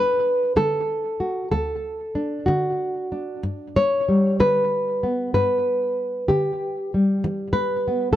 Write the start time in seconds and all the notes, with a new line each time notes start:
Already playing: D2 D4 B4
0.56 D3 A4
1.20 F#4
1.51 D2 A4
2.15 D4
2.46 D3 F#4
3.12 D4
3.43 G2
3.76 C#5
4.09 G3
4.40 D3 B4
5.03 B3
5.34 G2 B4
6.28 D3 G4
6.94 G3
7.24 E3
7.53 B4
7.88 B3
8.13 A4